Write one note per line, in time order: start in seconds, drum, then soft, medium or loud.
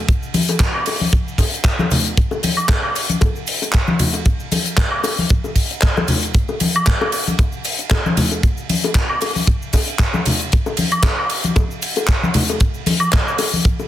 0.09 kick loud
0.09 closed hi-hat medium
0.09 cabasa medium
0.23 cabasa soft
0.34 open hi-hat loud
0.34 ride medium
0.34 high conga medium
0.34 cabasa medium
0.49 closed hi-hat medium
0.49 high bongo medium
0.49 cabasa soft
0.60 kick loud
0.60 clap loud
0.60 closed hi-hat medium
0.60 cabasa medium
0.74 high woodblock medium
0.86 open hi-hat loud
0.86 ride medium
0.86 high bongo medium
0.86 cabasa medium
1.01 open hi-hat medium
1.01 high conga medium
1.01 cabasa soft
1.13 kick loud
1.13 closed hi-hat medium
1.13 cabasa soft
1.28 cabasa soft
1.38 kick medium
1.38 open hi-hat loud
1.38 ride medium
1.38 high bongo medium
1.38 cabasa medium
1.54 closed hi-hat medium
1.54 cabasa soft
1.64 kick loud
1.64 clap loud
1.64 closed hi-hat medium
1.64 cabasa medium
1.79 high bongo medium
1.79 high conga loud
1.79 cabasa soft
1.91 open hi-hat loud
1.91 ride medium
1.91 low conga loud
1.91 cabasa loud
2.05 closed hi-hat medium
2.05 cabasa soft
2.17 kick loud
2.17 closed hi-hat medium
2.17 cabasa medium
2.31 high bongo medium
2.31 cabasa soft
2.43 open hi-hat loud
2.43 ride medium
2.43 high conga medium
2.43 cabasa medium
2.57 closed hi-hat medium
2.57 cabasa soft
2.57 high woodblock medium
2.69 kick loud
2.69 clap loud
2.69 high bongo medium
2.69 cabasa medium
2.83 high woodblock medium
2.95 open hi-hat loud
2.95 ride medium
2.95 cabasa medium
3.09 closed hi-hat medium
3.09 high conga medium
3.09 cabasa soft
3.21 kick loud
3.21 closed hi-hat medium
3.21 high bongo medium
3.21 cabasa soft
3.36 cabasa soft
3.47 open hi-hat loud
3.47 ride medium
3.47 cabasa medium
3.61 closed hi-hat medium
3.61 high bongo medium
3.61 cabasa soft
3.73 kick loud
3.73 clap loud
3.73 closed hi-hat medium
3.73 cabasa soft
3.87 high conga loud
3.87 cabasa soft
3.99 open hi-hat loud
3.99 ride medium
3.99 low conga medium
3.99 cabasa medium
4.14 closed hi-hat medium
4.14 high bongo medium
4.14 cabasa soft
4.25 kick loud
4.25 closed hi-hat medium
4.25 cabasa soft
4.40 cabasa soft
4.52 open hi-hat loud
4.52 ride medium
4.52 high bongo medium
4.52 high conga medium
4.52 cabasa medium
4.66 closed hi-hat medium
4.66 cabasa soft
4.77 kick loud
4.77 clap loud
4.77 closed hi-hat medium
4.77 cabasa soft
4.91 high woodblock medium
5.04 open hi-hat loud
5.04 ride medium
5.04 high bongo medium
5.04 cabasa medium
5.18 open hi-hat medium
5.18 high conga medium
5.18 cabasa soft
5.29 kick loud
5.29 closed hi-hat medium
5.29 cabasa soft
5.44 high bongo medium
5.44 cabasa soft
5.56 kick medium
5.56 open hi-hat loud
5.56 ride medium
5.56 cabasa medium
5.70 closed hi-hat medium
5.70 cabasa soft
5.82 kick loud
5.82 clap loud
5.82 closed hi-hat medium
5.82 cabasa medium
5.97 high bongo medium
5.97 high conga loud
5.97 cabasa soft
6.08 open hi-hat loud
6.08 ride medium
6.08 low conga medium
6.08 cabasa loud
6.23 closed hi-hat medium
6.23 cabasa soft
6.34 kick loud
6.34 closed hi-hat medium
6.34 cabasa medium
6.48 high bongo medium
6.48 cabasa soft
6.60 open hi-hat loud
6.60 ride medium
6.60 high conga medium
6.60 cabasa loud
6.75 closed hi-hat medium
6.75 cabasa soft
6.75 high woodblock loud
6.87 kick loud
6.87 clap loud
6.87 closed hi-hat medium
6.87 cabasa medium
7.01 high bongo medium
7.01 high woodblock medium
7.12 open hi-hat loud
7.12 ride medium
7.12 cabasa medium
7.27 closed hi-hat medium
7.27 high conga medium
7.27 cabasa soft
7.39 kick loud
7.39 closed hi-hat medium
7.39 high bongo medium
7.39 cabasa medium
7.52 cabasa soft
7.64 open hi-hat loud
7.64 ride medium
7.64 cabasa medium
7.79 closed hi-hat medium
7.79 cabasa soft
7.90 kick loud
7.90 clap loud
7.90 closed hi-hat medium
7.90 high bongo medium
7.90 cabasa medium
8.06 high conga loud
8.06 cabasa soft
8.17 open hi-hat loud
8.17 ride medium
8.17 low conga medium
8.17 cabasa medium
8.31 closed hi-hat medium
8.31 high bongo medium
8.31 cabasa soft
8.43 kick loud
8.43 closed hi-hat medium
8.43 cabasa medium
8.57 cabasa soft
8.69 open hi-hat loud
8.69 ride medium
8.69 high conga medium
8.69 cabasa medium
8.83 closed hi-hat medium
8.83 high bongo medium
8.83 cabasa soft
8.95 kick loud
8.95 clap loud
8.95 closed hi-hat medium
8.95 cabasa medium
9.09 high woodblock medium
9.21 open hi-hat loud
9.21 ride medium
9.21 high bongo soft
9.21 cabasa loud
9.35 open hi-hat medium
9.35 high conga medium
9.35 cabasa soft
9.47 kick loud
9.47 closed hi-hat medium
9.47 cabasa medium
9.62 cabasa soft
9.73 kick medium
9.73 open hi-hat loud
9.73 ride loud
9.73 high bongo medium
9.73 cabasa medium
9.87 closed hi-hat medium
9.87 cabasa soft
9.99 kick loud
9.99 clap loud
9.99 closed hi-hat medium
9.99 cabasa soft
10.14 high bongo medium
10.14 high conga medium
10.14 cabasa soft
10.25 open hi-hat loud
10.25 ride loud
10.25 low conga medium
10.25 cabasa loud
10.40 closed hi-hat medium
10.40 cabasa soft
10.52 kick loud
10.52 closed hi-hat medium
10.52 cabasa medium
10.66 high bongo medium
10.66 cabasa soft
10.77 open hi-hat loud
10.77 ride loud
10.77 high conga medium
10.77 cabasa loud
10.92 closed hi-hat medium
10.92 cabasa soft
10.92 high woodblock medium
11.03 kick loud
11.03 clap loud
11.03 closed hi-hat medium
11.03 high bongo medium
11.03 cabasa medium
11.19 high woodblock medium
11.30 open hi-hat loud
11.30 ride medium
11.30 cabasa medium
11.44 closed hi-hat medium
11.44 high conga medium
11.44 cabasa soft
11.56 kick loud
11.56 closed hi-hat medium
11.56 high bongo medium
11.56 cabasa medium
11.71 cabasa soft
11.82 open hi-hat loud
11.82 ride medium
11.82 cabasa loud
11.96 closed hi-hat medium
11.96 high bongo medium
11.96 cabasa soft
12.08 kick loud
12.08 clap loud
12.08 closed hi-hat medium
12.08 cabasa medium
12.23 high conga medium
12.23 cabasa soft
12.34 open hi-hat loud
12.34 ride medium
12.34 low conga medium
12.34 cabasa loud
12.48 closed hi-hat medium
12.48 high bongo medium
12.48 cabasa soft
12.60 kick loud
12.60 closed hi-hat medium
12.60 cabasa medium
12.74 cabasa soft
12.86 open hi-hat loud
12.86 ride medium
12.86 high bongo medium
12.86 high conga medium
12.86 cabasa medium
13.00 closed hi-hat medium
13.00 cabasa soft
13.00 high woodblock medium
13.12 kick loud
13.12 clap loud
13.12 closed hi-hat medium
13.12 cabasa medium
13.27 cabasa soft
13.27 high woodblock medium
13.38 open hi-hat loud
13.38 ride medium
13.38 high bongo medium
13.38 cabasa medium
13.53 open hi-hat medium
13.53 high conga medium
13.53 cabasa soft
13.65 kick loud
13.65 closed hi-hat medium
13.65 cabasa medium
13.79 high bongo medium
13.79 cabasa soft